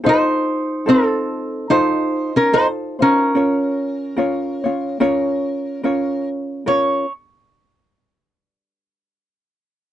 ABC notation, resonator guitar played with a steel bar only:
X:1
M:4/4
L:1/16
Q:"Swing" 1/4=72
K:Bbm
V:1 name="Resonator guitar played with a steel bar"
[Ec]4 [C=A]4 [Ec]3 [DB] [Ec]2 [DB]2- | [DB]12- [DB]2 z2 | d2 z12 z2 |]